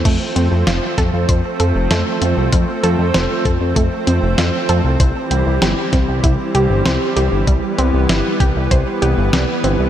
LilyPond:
<<
  \new Staff \with { instrumentName = "Synth arpeggio sound" } { \time 4/4 \key f \lydian \tempo 4 = 97 a8 c'8 f'8 a'8 c''8 a'8 a8 c'8 | f'8 a'8 c''8 a'8 a8 c'8 f'8 a'8 | c''8 g'8 g8 c'8 e'8 g'8 c''8 g'8 | g8 c'8 e'8 g'8 c''8 g'8 g8 c'8 | }
  \new Staff \with { instrumentName = "Analog synth pad" } { \clef bass \time 4/4 \key f \lydian << { c'1~ | c'1~ | c'1 | b1 | } \\ { <f a>1~ | <f a>1 | <e g>1~ | <e g>1 | } >> }
  \new Staff \with { instrumentName = "Analog synth bass" } { \clef bass \time 4/4 \key f \lydian f,16 r16 f,16 f,16 f,,16 r16 f,16 f,16 f,16 r16 f,16 f,,16 f,16 r16 f,16 c,16 | f,16 r16 f,16 f,16 f,,16 r16 f,16 f,16 f,16 r16 f,16 f,,16 f,16 r16 f,16 c,16 | c,16 r16 c,16 c,16 g,,16 r16 c,16 c,16 c,16 r16 c,16 g,,16 c,16 r16 c,16 g,,16 | c,16 r16 c,16 c,16 g,,16 r16 c,16 c,16 c,16 r16 c,16 g,,16 c,16 r16 g,,16 c,16 | }
  \new DrumStaff \with { instrumentName = "Drums" } \drummode { \time 4/4 <cymc hh bd>8 hh8 <hh sn>8 <hh bd sn>8 <hh bd>8 hh8 <hh sn>8 hh8 | <hh bd>8 hh8 <hh sn>8 <hh bd>8 <hh bd>8 hh8 <hh sn>8 hh8 | <hh bd>8 hh8 <hh sn>8 <hh bd sn>8 <hh bd>8 hh8 <hh sn>8 hh8 | <hh bd>8 hh8 <hh sn>8 <hh bd>8 <hh bd>8 hh8 <hh sn>8 hh8 | }
>>